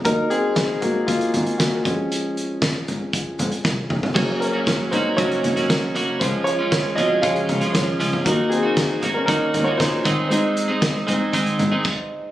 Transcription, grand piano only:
<<
  \new Staff \with { instrumentName = "Grand piano" } { \time 4/4 \key des \major \tempo 4 = 117 bes'8 <c' aes'>4 <bes ges'>8 <bes f'>4 <bes ges'>8 aes'8~ | aes'2~ aes'8 r4. | aes'8 <des' bes'>4 <ees' c''>8 <ges' des''>4 <des' bes'>8 r8 | <f' c''>8 <f' des''>4 <ges' ees''>8 <aes' f''>4 <f' des''>8 r8 |
ges'8 <c' aes'>4~ <c' aes'>16 <des' bes'>16 <ees' bes'>8. <f' des''>16 <ees' c''>4 | c''2.~ c''8 r8 | }
  \new Staff \with { instrumentName = "Grand piano" } { \time 4/4 \key des \major <ges bes ees'>8 r2. <f aes des'>8~ | <f aes des'>2.~ <f aes des'>8 r8 | <ges bes des'>8 r2. r8 | <f aes des'>8 r4. <f aes des'>8 r4. |
<ges bes ees'>8 r2. r8 | <aes c' ees'>4. <aes c' ees'>8 r2 | }
>>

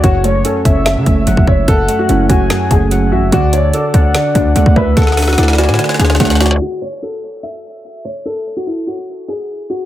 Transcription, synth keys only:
\new Staff \with { instrumentName = "Synth keys" } { \time 4/4 \key d \lydian \tempo 4 = 146 fis,8 a8 cis'8 cis'8 fis,8 a8 fis4 | fis,8 a8 cis'8 cis'8 fis,8 a8 fis4 | d8 d'8 d''8 d''8 d8 d'8 a4 | d8 d'8 d''8 d''8 d8 d'8 a4 |
r1 | r1 | }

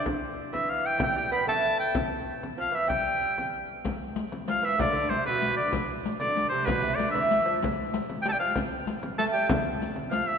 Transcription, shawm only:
\new Staff \with { instrumentName = "Shawm" } { \time 6/8 \key g \mixolydian \tempo 4. = 127 r4. e''8 f''8 g''8 | g''8 g''8 b''8 a''4 g''8 | r2 f''8 e''8 | g''2 r4 |
r2 f''8 e''8 | d''4 c''8 b'4 d''8 | r4. d''4 c''8 | b'4 d''8 e''4. |
r2 g''32 a''32 g''16 f''8 | r2 a''8 g''8 | r2 f''8 e''8 | }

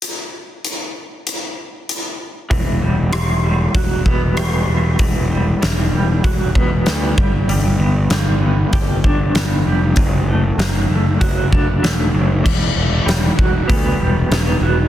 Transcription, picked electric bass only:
\new Staff \with { instrumentName = "Picked electric bass" } { \clef bass \time 4/4 \key e \minor \tempo 4 = 96 r1 | e,,8 e,,8 e,,4 e,,8 e,,8 e,,8 e,,8 | e,,4 e,,8 e,,8 r8 e,,8 d,8 g,,8 | g,,8 g,,8 g,,4 g,,8 g,,8 g,,8 f,,8 |
fis,,4 fis,,8 fis,,8 fis,,8 fis,,8 e,,8 fis,,8 | e,,8 e,,8 e,,8 e,,8 d,8 e,,8 e,,8 e,,8 | }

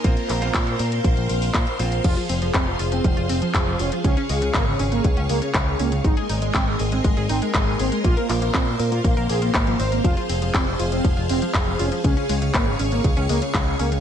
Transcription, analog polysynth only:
\new Staff \with { instrumentName = "Analog polysynth" } { \clef bass \time 4/4 \key f \minor \tempo 4 = 120 r1 | f'16 f16 f16 f16 c'16 f16 f16 c'16 f16 f16 c'16 f16 f16 f16 des'16 f16 | des'16 des16 des16 des16 bes16 des16 des16 bes16 des16 des16 bes16 des16 des16 des16 bes16 des16 | ees'16 aes16 aes16 aes16 c'16 aes16 aes16 c'16 aes16 aes16 c'16 aes16 aes16 aes16 c'16 aes16 |
f'16 bes16 bes16 bes16 c'16 bes16 bes16 f'16 bes16 bes16 aes'16 bes16 bes16 bes16 c''16 bes16 | f'16 f16 f16 f16 c'16 f16 f16 c'16 f16 f16 c'16 f16 f16 f16 des'16 f16 | des'16 des16 des16 des16 bes16 des16 des16 bes16 des16 des16 bes16 des16 des16 des16 bes16 des16 | }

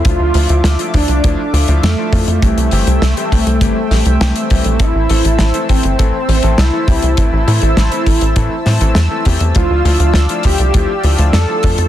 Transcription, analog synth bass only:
\new Staff \with { instrumentName = "Analog synth bass" } { \clef bass \time 4/4 \key d \minor \tempo 4 = 101 d,16 d,16 d,16 d,16 d,16 r16 d,16 c,16 d,16 r16 d,16 d,16 f,16 r16 f,16 f,16 | c,16 c,16 g,,16 c,16 c,16 r16 c,16 c,16 g,,16 r16 bes,,16 c,16 c,16 r16 c,16 bes,,16 | a,,16 a,,16 a,,16 a,,16 a,,16 r16 a,,16 g,,16 a,,16 r16 a,,16 a,,16 c,16 r16 c,16 c,16 | a,,16 a,,16 a,16 a,,16 a,,16 r16 a,,16 a,,16 a,16 r16 a,16 a,,16 e,16 r16 e,16 e,16 |
d,16 d,16 d,16 d,16 d,16 r16 d,16 c,16 d,16 r16 d,16 d,16 f,16 r16 f,16 f,16 | }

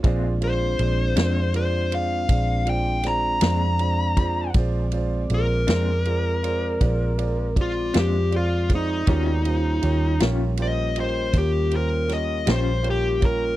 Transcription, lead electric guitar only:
\new Staff \with { instrumentName = "Lead electric guitar" } { \time 12/8 \key bes \mixolydian \tempo 4. = 53 r8 c''4. c''8 f''4 g''8 bes''2 | r4 bes'2. f'8 g'8 f'8 ees'8~ | ees'4. r8 ees''8 c''8 g'8 bes'8 ees''8 c''8 g'8 bes'8 | }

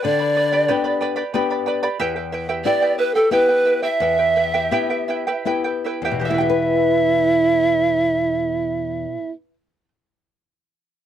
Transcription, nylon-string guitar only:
\new Staff \with { instrumentName = "Nylon-string guitar" } { \time 3/4 \key e \minor \tempo 4 = 81 d4 <b d' g'>4 <b d' g'>4 | e,4 <b e' g'>4 <b e' g'>4 | e,4 <b e' g'>4 <b e' g'>4 | <e, b, e b g' b'>2.~ |
<e, b, e b g' b'>2. | }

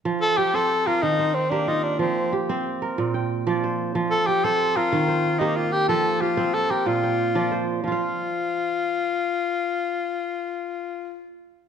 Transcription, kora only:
<<
  \new Staff \with { instrumentName = "Kora" } { \time 12/8 \key f \mixolydian \tempo 4. = 123 r4 g'8 c''4 bes'4 c''4 g'8 f'4~ | f'8 r8 g'8 c''4 bes'4 g''4 d''8 c''4~ | c''8 r8 g'8 c''4 bes'4 c''4 g'4. | r4 g'8 c''4 bes'4 g''4 d''8 c''4~ |
c''8 r1 r4. | r1. | }
  \new Staff \with { instrumentName = "Kora" } { \clef bass \time 12/8 \key f \mixolydian f4 r8 c'4 r8 ees4 r8 bes4 r8 | f4 r8 c'4 r8 bes,4 r8 f4 r8 | f4 r8 c'4 r8 ees4 r8 bes4 r8 | f4 r8 c'4 r8 bes,4 r8 f4 r8 |
<f f' f''>1.~ | <f f' f''>1. | }
>>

